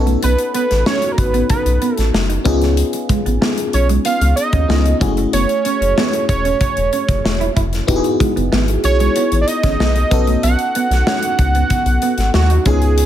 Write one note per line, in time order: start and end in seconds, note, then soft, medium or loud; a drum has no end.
0.00 0.16 B1 medium
0.00 2.41 B3 medium
0.00 2.42 C#4 medium
0.00 2.42 D#4 medium
0.00 2.42 F#4 medium
0.00 2.42 A4 medium
0.06 0.17 A3 medium
0.06 closed hi-hat soft
0.23 0.36 B1 loud
0.23 0.33 B3 medium
0.23 0.53 B4 medium
0.23 closed hi-hat medium
0.38 closed hi-hat soft
0.54 0.64 B3 medium
0.54 0.85 B4 medium
0.54 closed hi-hat medium
0.71 0.83 A1 medium
0.71 muted clean electric guitar stroke soft
0.71 snare soft
0.71 closed hi-hat soft
0.86 0.96 C#4 medium
0.86 1.13 C#5 loud
0.86 snare loud
1.02 closed hi-hat soft
1.12 1.20 A#4 medium
1.18 1.43 A1 medium
1.18 1.49 B4 loud
1.18 muted clean electric guitar stroke soft
1.18 kick medium
1.18 closed hi-hat medium
1.34 1.44 B3 medium
1.34 closed hi-hat soft
1.50 1.96 B4 medium
1.50 kick medium
1.50 closed hi-hat medium
1.65 1.78 B1 medium
1.65 closed hi-hat soft
1.82 1.92 B3 medium
1.82 closed hi-hat medium
1.96 2.11 A1 medium
1.96 2.10 A4 medium
1.96 snare soft
1.96 closed hi-hat soft
2.13 2.38 F#1 loud
2.13 muted clean electric guitar stroke soft
2.13 snare loud
2.29 2.40 D#4 medium
2.29 closed hi-hat soft
2.44 2.83 C#2 medium
2.44 4.64 B3 medium
2.44 4.65 C#4 medium
2.44 2.55 C#4 medium
2.44 4.65 D#4 medium
2.44 4.65 F4 medium
2.44 4.66 G#4 medium
2.44 kick medium
2.44 closed hi-hat medium
2.62 snare soft
2.62 closed hi-hat soft
2.77 closed hi-hat medium
2.93 muted clean electric guitar stroke soft
2.93 closed hi-hat soft
3.09 3.19 G#3 medium
3.09 kick loud
3.09 closed hi-hat medium
3.26 3.38 A1 medium
3.26 3.36 B3 medium
3.26 closed hi-hat soft
3.42 3.52 B3 medium
3.42 snare loud
3.58 closed hi-hat soft
3.73 3.98 B1 medium
3.73 3.88 C#5 medium
3.73 muted clean electric guitar stroke soft
3.73 closed hi-hat medium
3.89 3.99 G#3 medium
3.89 closed hi-hat soft
4.05 4.15 B3 medium
4.05 4.35 F5 loud
4.05 closed hi-hat medium
4.21 4.33 C#2 medium
4.21 closed hi-hat medium
4.36 4.97 D#5 medium
4.36 muted clean electric guitar stroke soft
4.36 closed hi-hat medium
4.53 4.65 D#2 medium
4.53 4.63 C#4 medium
4.53 kick medium
4.53 closed hi-hat soft
4.68 4.94 C#2 medium
4.68 5.01 B3 soft
4.68 4.80 B3 medium
4.68 4.99 C#4 soft
4.68 5.01 D#4 soft
4.68 5.01 F4 soft
4.68 5.01 G#4 medium
4.68 snare loud
4.86 muted clean electric guitar stroke soft
4.86 closed hi-hat soft
4.99 5.26 F#1 loud
4.99 5.07 G#3 soft
4.99 7.52 C#4 medium
4.99 7.52 E4 medium
4.99 7.52 F#4 medium
4.99 7.53 G#4 medium
4.99 kick medium
4.99 closed hi-hat medium
5.06 7.55 A3 medium
5.17 5.28 A3 medium
5.17 closed hi-hat soft
5.33 5.45 F#1 loud
5.33 5.43 B3 medium
5.33 6.25 C#5 loud
5.33 closed hi-hat medium
5.49 closed hi-hat soft
5.65 5.75 C#4 medium
5.65 closed hi-hat medium
5.81 5.93 F#1 medium
5.81 muted clean electric guitar stroke soft
5.81 closed hi-hat soft
5.98 6.07 B3 medium
5.98 snare loud
6.13 closed hi-hat soft
6.29 6.54 E1 medium
6.29 7.52 C#5 loud
6.29 muted clean electric guitar stroke soft
6.29 kick medium
6.29 closed hi-hat medium
6.45 6.55 C#4 medium
6.45 closed hi-hat soft
6.61 kick medium
6.61 closed hi-hat medium
6.77 6.89 E1 medium
6.77 closed hi-hat soft
6.93 7.03 C#4 medium
6.93 closed hi-hat medium
7.08 7.21 F#1 medium
7.08 kick medium
7.08 closed hi-hat soft
7.25 7.50 E1 medium
7.25 muted clean electric guitar stroke soft
7.25 snare loud
7.40 7.50 E4 medium
7.40 closed hi-hat soft
7.56 7.81 F1 medium
7.56 7.66 E4 medium
7.56 kick medium
7.56 closed hi-hat medium
7.73 snare soft
7.73 closed hi-hat soft
7.87 8.00 E1 medium
7.87 10.07 B3 medium
7.87 10.07 D#4 medium
7.87 10.07 E4 medium
7.87 10.08 F#4 medium
7.87 7.95 G4 medium
7.87 kick medium
7.87 closed hi-hat medium
7.96 10.11 G#4 medium
8.04 muted clean electric guitar stroke soft
8.04 closed hi-hat soft
8.20 8.30 G#3 medium
8.20 kick medium
8.20 closed hi-hat medium
8.36 8.49 F#1 medium
8.36 8.46 B3 medium
8.36 closed hi-hat soft
8.52 8.77 G#1 medium
8.52 8.62 B3 medium
8.52 snare loud
8.68 closed hi-hat soft
8.84 9.09 B1 medium
8.84 9.37 C#5 loud
8.84 muted clean electric guitar stroke soft
8.84 closed hi-hat medium
9.00 9.10 G#3 medium
9.00 closed hi-hat soft
9.16 9.26 B3 medium
9.16 closed hi-hat medium
9.32 9.44 A1 medium
9.32 closed hi-hat soft
9.41 9.49 D5 medium
9.47 10.43 D#5 loud
9.47 muted clean electric guitar stroke soft
9.47 closed hi-hat medium
9.63 9.76 G#1 medium
9.63 9.74 C#4 medium
9.63 kick medium
9.63 snare soft
9.63 closed hi-hat soft
9.80 10.04 B1 medium
9.80 9.90 B3 medium
9.80 snare loud
9.96 muted clean electric guitar stroke soft
9.96 closed hi-hat soft
10.11 10.36 B1 loud
10.11 12.62 B3 medium
10.11 12.62 C#4 medium
10.11 12.62 D#4 medium
10.11 12.62 F#4 medium
10.11 12.63 A4 medium
10.11 kick medium
10.11 closed hi-hat medium
10.27 10.37 A3 medium
10.27 closed hi-hat soft
10.43 10.55 B1 loud
10.43 10.53 B3 medium
10.43 12.30 F#5 loud
10.43 closed hi-hat medium
10.59 closed hi-hat soft
10.75 10.85 B3 medium
10.75 closed hi-hat medium
10.90 11.03 B1 medium
10.90 muted clean electric guitar stroke soft
10.90 snare soft
10.90 closed hi-hat soft
11.07 11.17 C#4 medium
11.07 snare loud
11.23 closed hi-hat medium
11.39 11.63 C#2 medium
11.39 muted clean electric guitar stroke soft
11.39 kick medium
11.39 closed hi-hat medium
11.55 11.65 B3 medium
11.55 closed hi-hat soft
11.70 kick medium
11.70 closed hi-hat medium
11.86 11.98 B1 medium
11.86 closed hi-hat soft
12.02 12.12 B3 medium
12.02 closed hi-hat medium
12.18 12.30 G#1 medium
12.18 snare soft
12.18 closed hi-hat soft
12.34 12.59 D#2 medium
12.34 12.64 F#4 medium
12.34 muted clean electric guitar stroke soft
12.34 snare loud
12.50 12.60 D#4 medium
12.50 closed hi-hat soft
12.65 13.03 C#2 medium
12.65 13.06 B3 medium
12.65 13.06 C#4 medium
12.65 12.76 C#4 medium
12.65 13.06 D#4 medium
12.65 13.06 F4 medium
12.65 13.06 G#4 medium
12.65 kick loud
12.65 closed hi-hat medium
12.82 closed hi-hat soft
12.98 closed hi-hat medium